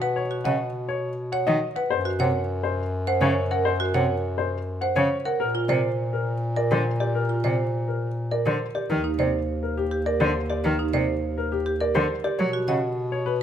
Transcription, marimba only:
0, 0, Header, 1, 2, 480
1, 0, Start_track
1, 0, Tempo, 582524
1, 133, Time_signature, 3, 2, 24, 8
1, 11066, End_track
2, 0, Start_track
2, 0, Title_t, "Marimba"
2, 0, Program_c, 0, 12
2, 14, Note_on_c, 0, 71, 57
2, 169, Note_off_c, 0, 71, 0
2, 254, Note_on_c, 0, 66, 55
2, 374, Note_on_c, 0, 75, 59
2, 409, Note_off_c, 0, 66, 0
2, 529, Note_off_c, 0, 75, 0
2, 1094, Note_on_c, 0, 73, 63
2, 1249, Note_off_c, 0, 73, 0
2, 1452, Note_on_c, 0, 71, 60
2, 1609, Note_off_c, 0, 71, 0
2, 1692, Note_on_c, 0, 66, 60
2, 1812, Note_on_c, 0, 73, 62
2, 1848, Note_off_c, 0, 66, 0
2, 1968, Note_off_c, 0, 73, 0
2, 2532, Note_on_c, 0, 72, 63
2, 2688, Note_off_c, 0, 72, 0
2, 2893, Note_on_c, 0, 70, 59
2, 3049, Note_off_c, 0, 70, 0
2, 3131, Note_on_c, 0, 66, 62
2, 3251, Note_on_c, 0, 73, 63
2, 3288, Note_off_c, 0, 66, 0
2, 3408, Note_off_c, 0, 73, 0
2, 3970, Note_on_c, 0, 72, 58
2, 4128, Note_off_c, 0, 72, 0
2, 4330, Note_on_c, 0, 70, 56
2, 4488, Note_off_c, 0, 70, 0
2, 4571, Note_on_c, 0, 65, 57
2, 4691, Note_on_c, 0, 72, 61
2, 4728, Note_off_c, 0, 65, 0
2, 4848, Note_off_c, 0, 72, 0
2, 5409, Note_on_c, 0, 70, 57
2, 5567, Note_off_c, 0, 70, 0
2, 5771, Note_on_c, 0, 67, 48
2, 5928, Note_off_c, 0, 67, 0
2, 6010, Note_on_c, 0, 65, 50
2, 6131, Note_on_c, 0, 72, 53
2, 6168, Note_off_c, 0, 65, 0
2, 6288, Note_off_c, 0, 72, 0
2, 6851, Note_on_c, 0, 70, 51
2, 7008, Note_off_c, 0, 70, 0
2, 7210, Note_on_c, 0, 67, 48
2, 7368, Note_off_c, 0, 67, 0
2, 7449, Note_on_c, 0, 63, 51
2, 7571, Note_on_c, 0, 72, 55
2, 7608, Note_off_c, 0, 63, 0
2, 7728, Note_off_c, 0, 72, 0
2, 8169, Note_on_c, 0, 67, 53
2, 8292, Note_on_c, 0, 70, 55
2, 8327, Note_off_c, 0, 67, 0
2, 8448, Note_off_c, 0, 70, 0
2, 8650, Note_on_c, 0, 67, 50
2, 8808, Note_off_c, 0, 67, 0
2, 8892, Note_on_c, 0, 63, 54
2, 9011, Note_on_c, 0, 72, 59
2, 9048, Note_off_c, 0, 63, 0
2, 9168, Note_off_c, 0, 72, 0
2, 9608, Note_on_c, 0, 67, 55
2, 9728, Note_on_c, 0, 70, 58
2, 9767, Note_off_c, 0, 67, 0
2, 9887, Note_off_c, 0, 70, 0
2, 10089, Note_on_c, 0, 67, 57
2, 10247, Note_off_c, 0, 67, 0
2, 10328, Note_on_c, 0, 66, 57
2, 10449, Note_on_c, 0, 75, 59
2, 10487, Note_off_c, 0, 66, 0
2, 10607, Note_off_c, 0, 75, 0
2, 11066, End_track
0, 0, End_of_file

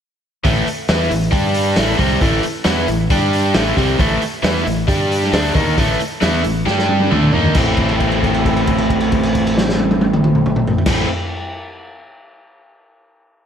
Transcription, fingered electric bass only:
0, 0, Header, 1, 3, 480
1, 0, Start_track
1, 0, Key_signature, 0, "minor"
1, 0, Tempo, 444774
1, 486, Time_signature, 4, 2, 24, 8
1, 14525, End_track
2, 0, Start_track
2, 0, Title_t, "Fingered electric bass"
2, 0, Program_c, 0, 33
2, 484, Note_on_c, 0, 33, 87
2, 707, Note_off_c, 0, 33, 0
2, 963, Note_on_c, 0, 40, 96
2, 1185, Note_off_c, 0, 40, 0
2, 1195, Note_on_c, 0, 33, 76
2, 1420, Note_off_c, 0, 33, 0
2, 1433, Note_on_c, 0, 43, 97
2, 1881, Note_off_c, 0, 43, 0
2, 1919, Note_on_c, 0, 33, 96
2, 2141, Note_off_c, 0, 33, 0
2, 2149, Note_on_c, 0, 36, 85
2, 2376, Note_off_c, 0, 36, 0
2, 2391, Note_on_c, 0, 33, 88
2, 2616, Note_off_c, 0, 33, 0
2, 2866, Note_on_c, 0, 40, 83
2, 3093, Note_off_c, 0, 40, 0
2, 3111, Note_on_c, 0, 33, 85
2, 3335, Note_off_c, 0, 33, 0
2, 3351, Note_on_c, 0, 43, 87
2, 3798, Note_off_c, 0, 43, 0
2, 3829, Note_on_c, 0, 33, 87
2, 4054, Note_off_c, 0, 33, 0
2, 4072, Note_on_c, 0, 36, 89
2, 4296, Note_off_c, 0, 36, 0
2, 4315, Note_on_c, 0, 33, 95
2, 4537, Note_off_c, 0, 33, 0
2, 4789, Note_on_c, 0, 40, 90
2, 5014, Note_off_c, 0, 40, 0
2, 5033, Note_on_c, 0, 33, 84
2, 5257, Note_off_c, 0, 33, 0
2, 5267, Note_on_c, 0, 43, 104
2, 5718, Note_off_c, 0, 43, 0
2, 5752, Note_on_c, 0, 38, 97
2, 5977, Note_off_c, 0, 38, 0
2, 5991, Note_on_c, 0, 39, 100
2, 6217, Note_off_c, 0, 39, 0
2, 6236, Note_on_c, 0, 33, 96
2, 6460, Note_off_c, 0, 33, 0
2, 6720, Note_on_c, 0, 40, 95
2, 6943, Note_off_c, 0, 40, 0
2, 6960, Note_on_c, 0, 33, 81
2, 7183, Note_off_c, 0, 33, 0
2, 7198, Note_on_c, 0, 43, 92
2, 7647, Note_off_c, 0, 43, 0
2, 7689, Note_on_c, 0, 38, 93
2, 7910, Note_off_c, 0, 38, 0
2, 7929, Note_on_c, 0, 39, 82
2, 8147, Note_off_c, 0, 39, 0
2, 8154, Note_on_c, 0, 33, 75
2, 11616, Note_off_c, 0, 33, 0
2, 11725, Note_on_c, 0, 33, 99
2, 11924, Note_off_c, 0, 33, 0
2, 14525, End_track
3, 0, Start_track
3, 0, Title_t, "Muted fingered electric bass strokes"
3, 725, Note_on_c, 9, 29, 42
3, 833, Note_off_c, 9, 29, 0
3, 2643, Note_on_c, 9, 29, 37
3, 2751, Note_off_c, 9, 29, 0
3, 4553, Note_on_c, 9, 29, 40
3, 4661, Note_off_c, 9, 29, 0
3, 6484, Note_on_c, 9, 29, 43
3, 6592, Note_off_c, 9, 29, 0
3, 14525, End_track
0, 0, End_of_file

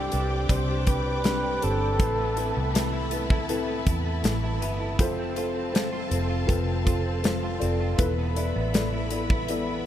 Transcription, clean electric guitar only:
0, 0, Header, 1, 2, 480
1, 0, Start_track
1, 0, Tempo, 750000
1, 1274, Time_signature, 4, 2, 24, 8
1, 6312, End_track
2, 0, Start_track
2, 0, Title_t, "Clean electric guitar"
2, 0, Program_c, 0, 27
2, 0, Note_on_c, 0, 48, 72
2, 0, Note_on_c, 0, 55, 57
2, 0, Note_on_c, 0, 62, 49
2, 0, Note_on_c, 0, 67, 60
2, 70, Note_off_c, 0, 62, 0
2, 78, Note_on_c, 0, 62, 49
2, 186, Note_off_c, 0, 67, 0
2, 194, Note_on_c, 0, 67, 55
2, 308, Note_off_c, 0, 48, 0
2, 316, Note_on_c, 0, 48, 70
2, 426, Note_off_c, 0, 62, 0
2, 434, Note_on_c, 0, 62, 49
2, 547, Note_off_c, 0, 67, 0
2, 555, Note_on_c, 0, 67, 53
2, 672, Note_off_c, 0, 62, 0
2, 679, Note_on_c, 0, 62, 47
2, 790, Note_off_c, 0, 55, 0
2, 798, Note_on_c, 0, 55, 54
2, 912, Note_off_c, 0, 67, 0
2, 920, Note_on_c, 0, 67, 62
2, 1033, Note_off_c, 0, 62, 0
2, 1041, Note_on_c, 0, 62, 60
2, 1153, Note_off_c, 0, 67, 0
2, 1161, Note_on_c, 0, 67, 56
2, 1275, Note_off_c, 0, 48, 0
2, 1281, Note_on_c, 0, 45, 81
2, 1324, Note_off_c, 0, 55, 0
2, 1325, Note_off_c, 0, 62, 0
2, 1325, Note_off_c, 0, 67, 0
2, 1398, Note_on_c, 0, 59, 56
2, 1510, Note_on_c, 0, 64, 61
2, 1623, Note_off_c, 0, 59, 0
2, 1630, Note_on_c, 0, 59, 52
2, 1752, Note_on_c, 0, 52, 61
2, 1866, Note_off_c, 0, 64, 0
2, 1874, Note_on_c, 0, 64, 57
2, 1986, Note_off_c, 0, 59, 0
2, 1994, Note_on_c, 0, 59, 54
2, 2105, Note_off_c, 0, 64, 0
2, 2113, Note_on_c, 0, 64, 61
2, 2225, Note_off_c, 0, 45, 0
2, 2233, Note_on_c, 0, 45, 72
2, 2344, Note_off_c, 0, 59, 0
2, 2352, Note_on_c, 0, 59, 47
2, 2468, Note_off_c, 0, 64, 0
2, 2476, Note_on_c, 0, 64, 54
2, 2583, Note_off_c, 0, 59, 0
2, 2591, Note_on_c, 0, 59, 49
2, 2706, Note_off_c, 0, 52, 0
2, 2714, Note_on_c, 0, 52, 60
2, 2831, Note_off_c, 0, 64, 0
2, 2839, Note_on_c, 0, 64, 61
2, 2947, Note_off_c, 0, 59, 0
2, 2954, Note_on_c, 0, 59, 60
2, 3062, Note_off_c, 0, 64, 0
2, 3070, Note_on_c, 0, 64, 58
2, 3193, Note_off_c, 0, 45, 0
2, 3193, Note_on_c, 0, 41, 68
2, 3240, Note_off_c, 0, 64, 0
2, 3242, Note_off_c, 0, 52, 0
2, 3242, Note_off_c, 0, 59, 0
2, 3317, Note_on_c, 0, 60, 56
2, 3436, Note_on_c, 0, 65, 64
2, 3545, Note_off_c, 0, 60, 0
2, 3553, Note_on_c, 0, 60, 46
2, 3673, Note_on_c, 0, 53, 62
2, 3784, Note_off_c, 0, 65, 0
2, 3792, Note_on_c, 0, 65, 58
2, 3903, Note_off_c, 0, 60, 0
2, 3911, Note_on_c, 0, 60, 55
2, 4022, Note_off_c, 0, 65, 0
2, 4029, Note_on_c, 0, 65, 64
2, 4147, Note_off_c, 0, 41, 0
2, 4154, Note_on_c, 0, 41, 74
2, 4263, Note_off_c, 0, 60, 0
2, 4270, Note_on_c, 0, 60, 45
2, 4382, Note_off_c, 0, 65, 0
2, 4389, Note_on_c, 0, 65, 57
2, 4508, Note_off_c, 0, 60, 0
2, 4515, Note_on_c, 0, 60, 50
2, 4628, Note_off_c, 0, 53, 0
2, 4635, Note_on_c, 0, 53, 56
2, 4750, Note_off_c, 0, 65, 0
2, 4758, Note_on_c, 0, 65, 65
2, 4867, Note_off_c, 0, 60, 0
2, 4874, Note_on_c, 0, 60, 67
2, 4989, Note_off_c, 0, 65, 0
2, 4996, Note_on_c, 0, 65, 63
2, 5110, Note_off_c, 0, 41, 0
2, 5113, Note_on_c, 0, 40, 68
2, 5162, Note_off_c, 0, 60, 0
2, 5163, Note_off_c, 0, 53, 0
2, 5163, Note_off_c, 0, 65, 0
2, 5237, Note_on_c, 0, 59, 59
2, 5357, Note_on_c, 0, 64, 63
2, 5468, Note_off_c, 0, 59, 0
2, 5476, Note_on_c, 0, 59, 56
2, 5592, Note_on_c, 0, 52, 63
2, 5705, Note_off_c, 0, 64, 0
2, 5712, Note_on_c, 0, 64, 56
2, 5824, Note_off_c, 0, 59, 0
2, 5831, Note_on_c, 0, 59, 57
2, 5944, Note_off_c, 0, 64, 0
2, 5951, Note_on_c, 0, 64, 63
2, 6063, Note_off_c, 0, 40, 0
2, 6071, Note_on_c, 0, 40, 68
2, 6178, Note_off_c, 0, 59, 0
2, 6185, Note_on_c, 0, 59, 54
2, 6301, Note_off_c, 0, 64, 0
2, 6312, Note_off_c, 0, 40, 0
2, 6312, Note_off_c, 0, 52, 0
2, 6312, Note_off_c, 0, 59, 0
2, 6312, End_track
0, 0, End_of_file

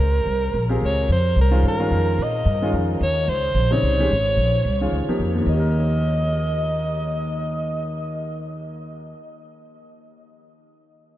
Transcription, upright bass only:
0, 0, Header, 1, 3, 480
1, 0, Start_track
1, 0, Tempo, 273598
1, 1912, Time_signature, 4, 2, 24, 8
1, 19604, End_track
2, 0, Start_track
2, 0, Title_t, "Upright bass"
2, 0, Program_c, 0, 32
2, 0, Note_on_c, 0, 37, 82
2, 441, Note_off_c, 0, 37, 0
2, 451, Note_on_c, 0, 36, 78
2, 926, Note_off_c, 0, 36, 0
2, 942, Note_on_c, 0, 34, 74
2, 1412, Note_off_c, 0, 34, 0
2, 1429, Note_on_c, 0, 37, 83
2, 1897, Note_off_c, 0, 37, 0
2, 1907, Note_on_c, 0, 41, 75
2, 2372, Note_off_c, 0, 41, 0
2, 2383, Note_on_c, 0, 36, 81
2, 2854, Note_off_c, 0, 36, 0
2, 2865, Note_on_c, 0, 43, 77
2, 3335, Note_off_c, 0, 43, 0
2, 3351, Note_on_c, 0, 41, 76
2, 3819, Note_off_c, 0, 41, 0
2, 3831, Note_on_c, 0, 46, 77
2, 4299, Note_off_c, 0, 46, 0
2, 4307, Note_on_c, 0, 43, 89
2, 4778, Note_off_c, 0, 43, 0
2, 4791, Note_on_c, 0, 41, 78
2, 5260, Note_off_c, 0, 41, 0
2, 5275, Note_on_c, 0, 39, 90
2, 5734, Note_off_c, 0, 39, 0
2, 5744, Note_on_c, 0, 37, 78
2, 6208, Note_off_c, 0, 37, 0
2, 6218, Note_on_c, 0, 34, 85
2, 6694, Note_off_c, 0, 34, 0
2, 6713, Note_on_c, 0, 36, 68
2, 7182, Note_off_c, 0, 36, 0
2, 7192, Note_on_c, 0, 32, 85
2, 7651, Note_off_c, 0, 32, 0
2, 7661, Note_on_c, 0, 34, 77
2, 8136, Note_off_c, 0, 34, 0
2, 8154, Note_on_c, 0, 36, 75
2, 8616, Note_off_c, 0, 36, 0
2, 8627, Note_on_c, 0, 37, 67
2, 8898, Note_off_c, 0, 37, 0
2, 9109, Note_on_c, 0, 41, 77
2, 9571, Note_off_c, 0, 41, 0
2, 9582, Note_on_c, 0, 39, 81
2, 15990, Note_off_c, 0, 39, 0
2, 19604, End_track
3, 0, Start_track
3, 0, Title_t, "Muted upright bass strokes"
3, 8912, Note_on_c, 9, 29, 32
3, 9087, Note_off_c, 9, 29, 0
3, 19604, End_track
0, 0, End_of_file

